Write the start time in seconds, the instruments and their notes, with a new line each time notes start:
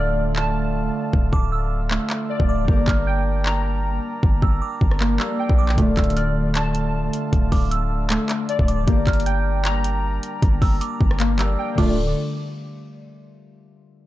Already playing: 808-style bass D1, accordion D3 A3 F4, harp D3 A3 F4 G4 D5 F5, synth keys A3 D5, synth bell F6
0.36 synth keys A5, clap
1.13 808-style bass D1, kick
1.33 808-style bass D1, synth bell D6, kick
1.52 synth bell E6
1.91 synth keys A3, clap
2.10 clap
2.30 synth keys D5
2.40 808-style bass D1, kick
2.49 synth bell D6
2.64 harp G3 G4
2.68 808-style bass G1, accordion G3 D4 A#4, synth keys A#3, harp A#4, kick
2.72 harp D5
2.88 808-style bass G1, synth bell F6, kick, clap
3.07 synth keys G5, synth bell G6
3.46 synth keys A#5, clap
4.23 808-style bass G1, kick
4.42 808-style bass G1, synth bell E6, kick
4.62 synth bell D6
4.81 808-style bass G1, kick
4.91 cross-stick
5.00 synth keys A#3, clap
5.18 harp G3 G4 A#4, synth bell E6, clap
5.22 harp F5
5.39 synth keys G5
5.49 808-style bass A#1, kick
5.58 synth bell D6
5.69 clap
5.74 harp D3 A3, synth keys A3
5.78 808-style bass D1, accordion D3 A3 F4, harp F4, kick, closed hi-hat
5.82 harp D5
5.97 808-style bass D1, synth bell E6, kick, clap, closed hi-hat
6.04 closed hi-hat
6.10 closed hi-hat
6.17 synth keys D5, synth bell F6, closed hi-hat
6.55 synth keys A5, clap, closed hi-hat
6.75 closed hi-hat
7.13 closed hi-hat
7.33 808-style bass D1, kick, closed hi-hat
7.52 808-style bass D1, synth bell D6, kick, open hi-hat
7.71 synth bell E6, closed hi-hat
8.10 synth keys A3, clap, closed hi-hat
8.29 clap, closed hi-hat
8.49 synth keys D5, closed hi-hat
8.59 808-style bass D1, kick
8.68 synth bell D6, closed hi-hat
8.83 harp G3 G4
8.88 808-style bass G1, accordion G3 D4 A#4, synth keys A#3, harp A#4, kick, closed hi-hat
8.92 harp D5
9.07 808-style bass G1, synth bell F6, kick, clap, closed hi-hat
9.13 closed hi-hat
9.20 closed hi-hat
9.26 synth keys G5, synth bell G6, closed hi-hat
9.65 synth keys A#5, clap, closed hi-hat
9.84 closed hi-hat
10.23 closed hi-hat
10.42 808-style bass G1, kick, closed hi-hat
10.62 808-style bass G1, synth bell E6, kick, open hi-hat
10.81 synth bell D6, closed hi-hat
11.01 808-style bass G1, kick
11.11 cross-stick
11.20 synth keys A#3, clap, closed hi-hat
11.37 harp G3 G4 A#4, synth bell E6, clap, closed hi-hat
11.41 harp F5
11.59 synth keys G5
11.74 808-style bass D1, harp D3 A3, accordion D3 A3 F4, synth keys A3 D4 F4, synth bell D6, kick, crash
11.79 harp F4 D5